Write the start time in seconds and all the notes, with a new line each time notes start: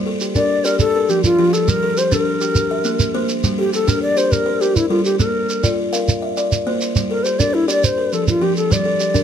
Already playing: G3
0.06 A4
0.21 G4, shekere
0.35 D4 A#4 D5, shekere
0.65 G4 A#4 D5, shekere
0.79 A4, shekere
0.95 A#4
1.09 F3 G4, shekere
1.24 F4, shekere
1.39 F3 G4
1.53 A4, shekere
1.68 G3 A#4, shekere
1.83 A4
1.97 G4 C5, shekere
2.11 D4 A#4, shekere
2.41 G4, shekere
2.55 shekere
2.71 E5
2.85 A#3, shekere
3.00 shekere
3.15 A#3 C5
3.29 shekere
3.44 G3, shekere
3.58 G4 A4
3.73 G4 A4, shekere
3.87 D4 A#4, shekere
4.02 D5
4.17 G4 C5 D5, shekere
4.32 A#4, shekere
4.46 C5
4.61 G4 A#4, shekere
4.76 E4, shekere
4.90 G3 F4 A4
5.05 G4, shekere
5.19 A#3 A#4, shekere
5.50 shekere
5.63 F4 D5, shekere
5.93 A#4 F5, shekere
6.08 shekere
6.22 E5
6.37 D5, shekere
6.52 shekere
6.67 A#3 C5
6.81 shekere
6.96 G3, shekere
7.10 A4 A#4
7.23 G4 C5, shekere
7.39 D4 A#4 D5, shekere
7.54 E4
7.68 G4 D5, shekere
7.84 C5, shekere
7.98 A#4
8.13 F3 A4, shekere
8.28 F4, shekere
8.41 F3 G4
8.57 A4, shekere
8.70 G3 D5, shekere
8.85 A4
9.00 G4, shekere
9.14 D4 A#4, shekere